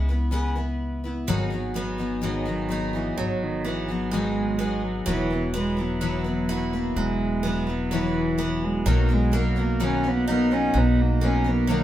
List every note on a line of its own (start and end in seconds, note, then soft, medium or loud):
0.00 1.24 C#2 medium
0.00 0.30 B5 medium
0.09 0.31 B3 soft
0.09 0.32 E4 soft
0.09 0.32 B4 soft
0.31 0.56 C#3 medium
0.31 0.56 G#3 medium
0.31 0.56 B3 medium
0.31 0.55 E4 medium
0.31 0.54 B4 medium
0.56 1.05 B3 soft
0.56 1.04 E4 soft
0.56 1.03 B4 soft
1.04 1.27 B3 soft
1.04 1.29 E4 soft
1.04 1.28 B4 soft
1.27 3.14 G#1 loud
1.27 1.51 G#2 medium
1.27 1.52 D#3 medium
1.27 1.52 F#3 medium
1.27 1.52 B3 medium
1.27 1.51 D#4 medium
1.27 1.49 G#4 medium
1.50 1.73 F#3 soft
1.50 1.74 B3 soft
1.50 1.75 D#4 soft
1.50 1.75 G#4 soft
1.74 1.99 F#3 medium
1.74 1.99 B3 medium
1.74 1.98 D#4 medium
1.74 1.97 G#4 medium
1.98 2.22 F#3 soft
1.98 2.21 B3 soft
1.98 2.22 D#4 soft
1.98 2.22 G#4 soft
2.22 2.46 G#2 medium
2.22 2.46 D#3 medium
2.22 2.96 D#3 medium
2.22 2.47 F#3 medium
2.22 2.46 B3 medium
2.22 2.45 D#4 medium
2.22 2.44 G#4 medium
2.45 2.67 F#3 soft
2.45 2.69 B3 soft
2.45 2.70 D#4 soft
2.45 2.70 G#4 soft
2.69 2.93 F#3 medium
2.69 2.94 B3 medium
2.69 2.94 D#4 medium
2.69 2.92 G#4 medium
2.93 3.18 E3 medium
2.93 3.64 F#3 soft
2.93 3.65 B3 soft
2.93 3.65 D#4 soft
2.93 3.65 G#4 soft
3.17 5.03 G#1 medium
3.17 3.44 F#3 medium
3.17 4.11 F#3 medium
3.43 3.68 D#3 medium
3.65 3.91 E3 medium
3.65 3.89 F#3 medium
3.65 3.89 B3 medium
3.65 3.89 D#4 medium
3.65 3.87 G#4 medium
3.88 4.14 F#3 medium
3.88 4.12 F#3 soft
3.88 4.13 B3 soft
3.88 4.13 D#4 soft
3.88 4.12 G#4 soft
4.12 4.60 G#2 medium
4.12 4.60 D#3 medium
4.12 4.58 F#3 medium
4.12 4.85 G#3 medium
4.12 4.59 B3 medium
4.12 4.59 D#4 medium
4.12 4.60 G#4 medium
4.59 5.06 F#3 medium
4.59 5.06 B3 medium
4.59 5.08 D#4 medium
4.59 5.08 G#4 medium
4.84 5.07 F#3 medium
5.06 6.92 E1 medium
5.06 5.30 E3 medium
5.06 5.52 E3 medium
5.06 5.31 F#3 medium
5.06 5.31 B3 medium
5.06 5.31 E4 medium
5.06 5.29 B4 medium
5.30 5.54 B3 soft
5.30 5.55 E4 soft
5.30 5.54 B4 soft
5.54 5.78 F#3 soft
5.54 5.81 G#3 medium
5.54 5.78 B3 medium
5.54 5.77 E4 medium
5.54 5.76 B4 medium
5.77 6.76 F#3 medium
5.77 6.00 B3 soft
5.77 6.01 E4 soft
5.77 6.01 B4 soft
6.01 6.25 E3 medium
6.01 6.25 F#3 medium
6.01 6.25 B3 medium
6.01 6.25 E4 medium
6.01 6.23 B4 medium
6.24 6.49 B3 soft
6.24 6.49 E4 soft
6.24 6.49 B4 soft
6.49 6.73 F#3 medium
6.49 6.73 B3 medium
6.49 6.74 E4 medium
6.49 6.72 B4 medium
6.73 6.99 A#3 medium
6.73 7.44 B3 soft
6.73 7.45 E4 soft
6.73 7.44 B4 medium
6.96 8.81 E1 medium
6.96 7.90 F#3 medium
6.96 7.72 G#3 medium
7.44 7.68 F#3 medium
7.44 7.68 B3 medium
7.44 7.68 E4 medium
7.44 7.66 B4 medium
7.67 7.95 F#3 medium
7.67 7.92 B3 soft
7.67 7.92 E4 soft
7.67 7.91 B4 soft
7.91 8.38 E3 medium
7.91 8.66 E3 medium
7.91 8.36 F#3 medium
7.91 8.37 B3 medium
7.91 8.38 E4 medium
7.91 8.40 B4 medium
8.38 8.85 F#3 medium
8.38 8.86 B3 medium
8.38 8.86 E4 medium
8.38 8.87 B4 medium
8.64 8.91 G#3 medium
8.86 10.71 B1 loud
8.86 9.09 B2 medium
8.86 9.10 D#3 medium
8.86 9.10 F#3 medium
8.86 9.15 A#3 medium
8.86 9.09 B3 medium
8.86 9.09 D#4 medium
8.86 9.07 A#4 medium
9.09 9.30 F#3 soft
9.09 9.32 B3 soft
9.09 9.33 D#4 soft
9.09 9.33 A#4 soft
9.13 9.37 G#3 medium
9.32 9.56 F#3 medium
9.32 11.20 A#3 medium
9.32 9.57 B3 medium
9.32 9.56 D#4 medium
9.32 9.55 A#4 medium
9.36 9.62 F#3 medium
9.56 9.79 F#3 soft
9.56 9.80 B3 soft
9.56 9.80 D#4 soft
9.56 9.80 A#4 medium
9.61 9.85 A#3 medium
9.80 10.03 B2 medium
9.80 10.04 D#3 medium
9.80 10.04 F#3 medium
9.80 10.04 B3 medium
9.80 10.03 D#4 medium
9.80 10.02 A#4 medium
9.84 10.10 C#4 medium
10.04 10.26 F#3 soft
10.04 10.27 B3 soft
10.04 10.28 D#4 soft
10.04 10.27 A#4 soft
10.08 10.30 B3 medium
10.28 10.51 F#3 medium
10.28 10.52 B3 medium
10.28 10.54 B3 medium
10.28 10.51 D#4 medium
10.28 10.50 A#4 medium
10.51 11.20 F#3 soft
10.51 11.21 B3 soft
10.51 10.79 C#4 medium
10.51 11.22 D#4 medium
10.51 11.22 A#4 medium
10.74 11.84 B1 loud
10.74 11.66 F#3 medium
10.74 11.03 B3 medium
11.01 11.26 A#3 medium
11.21 11.45 F#3 medium
11.21 11.84 A#3 medium
11.21 11.46 B3 medium
11.21 11.50 C#4 medium
11.21 11.45 D#4 medium
11.21 11.43 A#4 medium
11.44 11.69 F#3 soft
11.44 11.69 B3 soft
11.44 11.72 B3 medium
11.44 11.69 D#4 soft
11.44 11.68 A#4 medium
11.69 11.84 B2 medium
11.69 11.84 D#3 medium
11.69 11.84 F#3 medium
11.69 11.84 A#3 medium
11.69 11.84 B3 medium
11.69 11.84 D#4 medium
11.69 11.84 A#4 medium